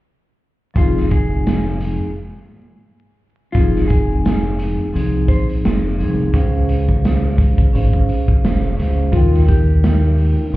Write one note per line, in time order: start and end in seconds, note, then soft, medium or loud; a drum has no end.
0.74 1.97 F1 loud
0.74 2.05 F3 medium
0.74 2.05 C4 medium
0.74 2.06 D#4 medium
0.74 1.08 F4 loud
0.74 2.06 G#4 loud
0.74 kick loud
0.74 closed hi-hat medium
0.97 snare soft
1.11 2.12 G#4 medium
1.11 kick loud
1.11 closed hi-hat medium
1.47 snare loud
1.47 closed hi-hat loud
1.81 closed hi-hat medium
3.52 4.76 F1 loud
3.52 4.85 F3 medium
3.52 4.85 C4 medium
3.52 4.86 D#4 medium
3.52 3.85 F4 loud
3.52 kick loud
3.52 closed hi-hat medium
3.57 4.86 G#4 loud
3.76 snare soft
3.88 4.89 G#4 medium
3.88 kick loud
3.88 closed hi-hat medium
4.26 snare loud
4.26 closed hi-hat loud
4.59 closed hi-hat medium
4.92 5.25 C2 loud
4.92 5.91 F3 medium
4.92 5.91 C4 medium
4.92 5.92 D#4 medium
4.92 5.92 G#4 loud
4.92 closed hi-hat medium
5.28 5.47 C5 medium
5.28 kick loud
5.28 closed hi-hat medium
5.49 closed hi-hat medium
5.65 6.02 F1 loud
5.65 snare loud
5.65 closed hi-hat medium
5.96 6.30 C2 loud
5.96 6.30 F3 medium
5.96 6.31 C4 medium
5.96 6.31 D#4 medium
5.96 6.32 G#4 loud
5.96 closed hi-hat medium
6.33 7.55 C#2 loud
6.33 7.63 C#4 medium
6.33 7.64 G#4 medium
6.33 7.64 C5 medium
6.33 7.65 F5 loud
6.33 kick loud
6.33 closed hi-hat medium
6.69 closed hi-hat medium
6.89 kick medium
7.05 snare loud
7.05 closed hi-hat loud
7.38 kick loud
7.38 closed hi-hat medium
7.58 kick loud
7.73 8.04 G#1 loud
7.73 8.71 C#4 loud
7.73 8.71 G#4 medium
7.73 8.72 C5 medium
7.73 8.72 F5 loud
7.73 closed hi-hat medium
7.93 kick medium
8.09 closed hi-hat medium
8.28 kick medium
8.44 8.74 F1 loud
8.44 snare loud
8.44 closed hi-hat medium
8.77 9.09 C#2 loud
8.77 9.10 C#4 medium
8.77 9.11 G#4 medium
8.77 9.11 C5 medium
8.77 9.12 F5 medium
8.77 snare soft
8.77 closed hi-hat medium
9.12 10.34 D#2 loud
9.12 10.43 D#4 medium
9.12 9.44 F4 loud
9.12 10.43 A#4 medium
9.12 10.44 C#5 medium
9.12 10.44 G5 loud
9.12 kick loud
9.12 closed hi-hat medium
9.34 snare soft
9.48 10.49 G4 medium
9.48 kick loud
9.48 closed hi-hat medium
9.84 snare loud
9.84 closed hi-hat loud
10.18 open hi-hat medium
10.52 10.57 A#1 loud
10.52 10.57 D#4 medium
10.52 10.57 A#4 medium